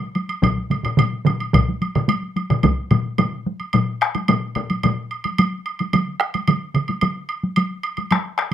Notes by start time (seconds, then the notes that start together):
0.02 taiko high
0.15 taiko high, high woodblock
0.29 taiko high, high woodblock
0.42 taiko, taiko low-mid, taiko mid, taiko high, high woodblock
0.57 taiko high
0.70 taiko low-mid, taiko mid, taiko high, high woodblock
0.83 taiko low-mid, taiko mid, taiko high, high woodblock
0.97 taiko low-mid, taiko mid, taiko high, high woodblock
1.13 taiko high
1.26 taiko low-mid, taiko mid, taiko high, high woodblock
1.40 taiko high, high woodblock
1.53 taiko, taiko low-mid, taiko mid, taiko high, high woodblock
1.68 taiko high
1.82 taiko high, high woodblock
1.95 taiko low-mid, taiko mid, taiko high, high woodblock
2.09 taiko high, high woodblock
2.22 taiko high
2.36 taiko high, high woodblock
2.50 taiko low-mid, taiko mid, taiko high, high woodblock
2.63 taiko, taiko low-mid, taiko mid, taiko high, high woodblock
2.78 taiko high
2.91 taiko low-mid, taiko mid, taiko high, high woodblock
3.05 taiko high
3.18 taiko low-mid, taiko mid, taiko high, high woodblock
3.32 taiko high
3.46 taiko high
3.60 taiko high, high woodblock
3.73 taiko low-mid, taiko high, high woodblock
4.01 taiko rim, high woodblock
4.15 taiko high, high woodblock
4.28 taiko low-mid, taiko high, high woodblock
4.55 taiko low-mid, high woodblock
4.70 taiko high, high woodblock
4.83 taiko low-mid, taiko high, high woodblock
5.11 high woodblock
5.24 taiko high, high woodblock
5.38 taiko high, high woodblock
5.66 high woodblock
5.79 taiko high, high woodblock
5.93 taiko mid, taiko high, high woodblock
6.20 taiko rim, high woodblock
6.34 taiko high, high woodblock
6.48 taiko mid, taiko high, high woodblock
6.74 taiko mid, high woodblock
6.88 taiko high, high woodblock
7.01 taiko mid, taiko high, high woodblock
7.29 high woodblock
7.44 taiko high
7.56 taiko high, high woodblock
7.83 high woodblock
7.97 taiko high, high woodblock
8.11 taiko rim, taiko high, high woodblock
8.38 taiko rim, high woodblock